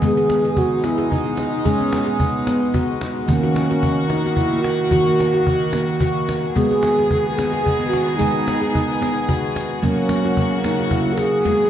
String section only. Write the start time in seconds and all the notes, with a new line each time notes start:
0.02 B2 G#3 D#4
3.29 D#3 A#3 F#4
6.56 D#3 B3 G#4
9.82 C#3 A#3 F#4
11.45 D#3 B3 G#4